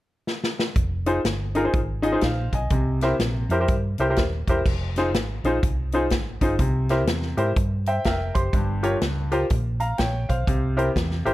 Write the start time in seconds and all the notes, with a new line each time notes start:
0.27 snare
0.44 snare
0.59 snare
0.76 F1, kick, closed hi-hat
1.06 D#4 F4 G#4 C5, closed hi-hat
1.24 G1, snare, closed hi-hat
1.55 D#4 F4 G#4 A#4, closed hi-hat
1.64 D#4 F4 G#4 C5
1.73 G#1, kick, closed hi-hat
2.02 D#4 F4 G#4 D#5, closed hi-hat
2.12 D#4 F4 G#4 C5
2.21 A#1 C5 F5, kick, snare, closed hi-hat
2.53 B1 D#5 G#5, kick, closed hi-hat
2.70 C2 C3, kick, closed hi-hat
3.01 E4 G4 A#4 C5, snare, closed hi-hat
3.19 A#1, snare, closed hi-hat
3.49 F2 E4 G4 A#4 C5, closed hi-hat
3.60 E4 G4 A#4 C5
3.68 G2, kick, closed hi-hat
3.98 C2 E4 G4 A#4 C5, closed hi-hat
4.09 E4 G4 A#4 C5
4.16 D#1, kick, snare, closed hi-hat
4.47 E1 E4 G4 A#4 C5, kick, closed hi-hat
4.66 F1, kick, crash
4.96 D#4 F4 G#4 C5, snare, closed hi-hat
5.14 G#1, snare, closed hi-hat
5.44 A#1 D#4 F4 G#4 C5, closed hi-hat
5.63 C2, kick, closed hi-hat
5.92 D#4 F4 G#4 C5, closed hi-hat
6.10 G#1, kick, snare, closed hi-hat
6.41 G1 D#4 F4 G#4 C5, kick, closed hi-hat
6.59 C2 C3, kick, closed hi-hat
6.89 E4 G4 A#4 C5, snare, closed hi-hat
7.07 E2, snare, closed hi-hat
7.22 snare
7.37 G#2 E4 G4 A#4 C5, closed hi-hat
7.56 G2, kick, closed hi-hat
7.86 C5 E5 G5, closed hi-hat
8.04 F1 A#4 E5 G5, kick, snare, closed hi-hat
8.35 F#1 G4 C5 C6, kick, closed hi-hat
8.53 G1 G2, kick, closed hi-hat
8.83 F4 G4 A#4 C#5, closed hi-hat
9.01 C#2, snare, closed hi-hat
9.32 F4 G4 A#4 C5, closed hi-hat
9.50 A#1, kick, closed hi-hat
9.80 F5 A#5, closed hi-hat
9.98 A#1 C#5 G5, kick, snare, closed hi-hat
10.29 B1 C5 F5, kick, closed hi-hat
10.47 C2 C3, kick, closed hi-hat
10.77 E4 G4 A#4 C5, closed hi-hat
10.95 E2, kick, snare, closed hi-hat
11.11 snare
11.25 G#1 E4 G4 A#4 C5, closed hi-hat